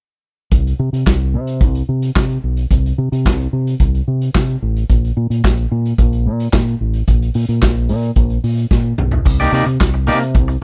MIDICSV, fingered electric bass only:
0, 0, Header, 1, 2, 480
1, 0, Start_track
1, 0, Key_signature, -3, "minor"
1, 0, Tempo, 546448
1, 455, Time_signature, 4, 2, 24, 8
1, 9339, End_track
2, 0, Start_track
2, 0, Title_t, "Fingered electric bass"
2, 0, Program_c, 0, 33
2, 456, Note_on_c, 0, 36, 75
2, 636, Note_off_c, 0, 36, 0
2, 697, Note_on_c, 0, 48, 89
2, 787, Note_off_c, 0, 48, 0
2, 815, Note_on_c, 0, 48, 75
2, 906, Note_off_c, 0, 48, 0
2, 938, Note_on_c, 0, 36, 92
2, 1177, Note_on_c, 0, 48, 86
2, 1190, Note_off_c, 0, 36, 0
2, 1411, Note_on_c, 0, 36, 96
2, 1424, Note_off_c, 0, 48, 0
2, 1594, Note_off_c, 0, 36, 0
2, 1657, Note_on_c, 0, 48, 80
2, 1839, Note_off_c, 0, 48, 0
2, 1898, Note_on_c, 0, 48, 94
2, 2079, Note_off_c, 0, 48, 0
2, 2140, Note_on_c, 0, 35, 75
2, 2321, Note_off_c, 0, 35, 0
2, 2379, Note_on_c, 0, 36, 81
2, 2560, Note_off_c, 0, 36, 0
2, 2619, Note_on_c, 0, 48, 88
2, 2710, Note_off_c, 0, 48, 0
2, 2741, Note_on_c, 0, 48, 89
2, 2860, Note_on_c, 0, 36, 106
2, 2874, Note_off_c, 0, 48, 0
2, 3041, Note_off_c, 0, 36, 0
2, 3100, Note_on_c, 0, 48, 91
2, 3281, Note_off_c, 0, 48, 0
2, 3336, Note_on_c, 0, 36, 93
2, 3518, Note_off_c, 0, 36, 0
2, 3580, Note_on_c, 0, 48, 75
2, 3761, Note_off_c, 0, 48, 0
2, 3819, Note_on_c, 0, 48, 94
2, 4001, Note_off_c, 0, 48, 0
2, 4061, Note_on_c, 0, 33, 84
2, 4242, Note_off_c, 0, 33, 0
2, 4301, Note_on_c, 0, 34, 92
2, 4482, Note_off_c, 0, 34, 0
2, 4539, Note_on_c, 0, 46, 94
2, 4630, Note_off_c, 0, 46, 0
2, 4657, Note_on_c, 0, 46, 70
2, 4749, Note_off_c, 0, 46, 0
2, 4780, Note_on_c, 0, 34, 92
2, 4961, Note_off_c, 0, 34, 0
2, 5020, Note_on_c, 0, 46, 100
2, 5201, Note_off_c, 0, 46, 0
2, 5258, Note_on_c, 0, 34, 101
2, 5499, Note_on_c, 0, 46, 85
2, 5512, Note_off_c, 0, 34, 0
2, 5680, Note_off_c, 0, 46, 0
2, 5738, Note_on_c, 0, 46, 90
2, 5919, Note_off_c, 0, 46, 0
2, 5979, Note_on_c, 0, 33, 79
2, 6160, Note_off_c, 0, 33, 0
2, 6219, Note_on_c, 0, 34, 87
2, 6399, Note_off_c, 0, 34, 0
2, 6457, Note_on_c, 0, 46, 92
2, 6548, Note_off_c, 0, 46, 0
2, 6575, Note_on_c, 0, 46, 90
2, 6667, Note_off_c, 0, 46, 0
2, 6696, Note_on_c, 0, 34, 97
2, 6932, Note_on_c, 0, 46, 87
2, 6945, Note_off_c, 0, 34, 0
2, 7115, Note_off_c, 0, 46, 0
2, 7169, Note_on_c, 0, 34, 103
2, 7352, Note_off_c, 0, 34, 0
2, 7411, Note_on_c, 0, 46, 87
2, 7593, Note_off_c, 0, 46, 0
2, 7651, Note_on_c, 0, 46, 88
2, 7833, Note_off_c, 0, 46, 0
2, 7891, Note_on_c, 0, 35, 72
2, 8073, Note_off_c, 0, 35, 0
2, 8131, Note_on_c, 0, 36, 91
2, 8312, Note_off_c, 0, 36, 0
2, 8365, Note_on_c, 0, 48, 99
2, 8458, Note_off_c, 0, 48, 0
2, 8487, Note_on_c, 0, 48, 88
2, 8580, Note_off_c, 0, 48, 0
2, 8612, Note_on_c, 0, 36, 84
2, 8853, Note_on_c, 0, 48, 92
2, 8866, Note_off_c, 0, 36, 0
2, 9090, Note_on_c, 0, 36, 95
2, 9103, Note_off_c, 0, 48, 0
2, 9271, Note_off_c, 0, 36, 0
2, 9339, End_track
0, 0, End_of_file